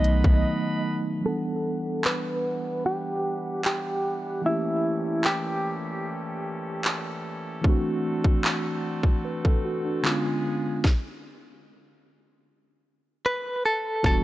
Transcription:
Already playing: B1 D#3 F#3 A3 B3 D#4 A4 D#5 F#5 B5
0.04 closed hi-hat
0.24 B1, kick
1.21 E3 G3 B3 D4 B4 F#5
1.26 D4 A4 F#5
2.05 B4, clap
2.86 G4
3.65 G4, clap
4.42 A#2 E3 A3 A#3 C#4 G4 A4
4.46 C#4 E4 G4
5.24 G4, clap
6.85 clap
7.61 D3 E3 A3 C4 F#4, kick
7.67 D4 F#4
8.24 kick
8.44 clap
9.03 kick
9.25 B4
9.45 A4, kick
9.65 F#4
9.85 D4
10.03 D3 G#3 B3 C#4 F4 G#4, clap
10.84 kick, snare
13.26 B4
13.66 A4
14.03 E1 E3 G3 B3 D4 F#4 A4, kick

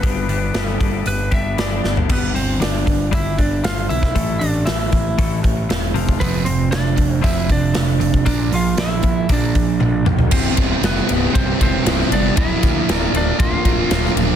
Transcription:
Already playing: B4
0.02 G1 G2 D3 G3 B3 D4 G4, kick, open hi-hat
0.28 G1 G3 B3 D4 G4, open hi-hat
0.54 G1 G3 B3 D4 G4, snare, open hi-hat
0.67 A4
0.80 G1 G3 B3 D4 G4, kick, open hi-hat
1.06 G1 B4, open hi-hat
1.31 G1 G3 B3 D4 G4 E5, kick, open hi-hat
1.57 G1 G2 D3 G3 B3 D4 G4 D5, snare, open hi-hat
1.84 G1, snare
1.97 floor tom
2.09 G1 G2 D3 G3 B3, kick, crash
2.13 B4
2.34 G1 G2 D3 C4 C5, open hi-hat
2.60 G1 G2 D3 D4 D5, snare, open hi-hat
2.86 G1 G2 D3, kick, open hi-hat
3.11 G1 G2 D3 G3 E4 E5, kick, open hi-hat
3.38 G2 D3 D4 D5, kick, open hi-hat
3.64 G1 G2 D3 F4 F5, snare, open hi-hat
3.89 B1 G2 D3 E4 E5, open hi-hat
4.03 kick, snare
4.15 A1 A2 E3 A3, kick, open hi-hat
4.39 A1 A2 E3 D4 D5, open hi-hat
4.66 A1 A2 E3 E4 E5, snare, open hi-hat
4.92 A1 A2 E3, kick, open hi-hat
5.18 A1 A2 E3 A3, kick, open hi-hat
5.43 A2 E3, kick, open hi-hat
5.69 E1 A2 E3, snare, open hi-hat
5.94 F1 F2 C3 F3, open hi-hat
6.09 kick
6.20 F1 F2 C3 F3 B3 B4, kick, open hi-hat
6.45 F1 F2 C3 C4 C5, open hi-hat
6.71 F1 F2 C3 D4 D5, snare, open hi-hat
6.96 F1 F2 C3, kick, open hi-hat
7.14 C5
7.21 F1 F2 C3 F3 E4 E5, kick, open hi-hat
7.47 F2 C3 D4, kick, open hi-hat
7.52 D5
7.74 F1 F2 C3, snare, open hi-hat
8.00 F1 F2 C3, open hi-hat
8.14 kick
8.25 A#1 A#2 F3 A#3 D4 D5, kick, open hi-hat
8.51 A#1 A#2 F3 F4 F5, open hi-hat
8.77 A#1 A#2 F3 E4 E5, snare, open hi-hat
9.02 A#1 A#2 F3, kick, open hi-hat
9.29 A#1 A#2 F3 A#3 D4, kick, open hi-hat
9.34 D5
9.55 A#2 F3, kick, open hi-hat
9.80 A#1 A#2 F3, high tom
10.05 B1 A#2 F3, mid tom
10.19 floor tom
10.31 C1 C2 G2 C3 G3 B3 C4 E4 C5, kick, crash
10.57 C1 C3 G3 B3 E4, kick, snare, ride
10.82 F1 C3 G3 B3 E4 B4, snare, ride
11.09 C1 C3 G3 B3 E4, ride
11.33 C1 C2 G2 C3 G3 B3 C4 E4 C5, kick, ride
11.59 E1 C3 G3 B3 C4 E4 C5, kick, ride
11.85 C1 C2 G2 C3 G3, snare, ride
11.89 B3 E4
12.00 snare
12.11 G1 C3 G3 B3 D4 E4 D5, ride
12.37 D1 A#2 F3 A#3 D4 E4 F4 A#4 E5, kick, ride
12.63 D2 A#3 D4 F4 A#4, kick, snare, ride
12.89 D1 A#3 D4 F4 A#4, snare, ride
12.96 D5
13.13 D1 A#3 D4 F4 A#4 D5, ride
13.39 D1 A#2 F3 A#3 D4 F4 A#4 F5, kick, ride
13.65 D1 A#3 D4 F4 A#4, kick, ride
13.90 D1 A#2 F3 A#3 D4 F4 A#4, snare, ride
14.05 snare
14.16 D1 A#3 D4 F4 A#4, ride

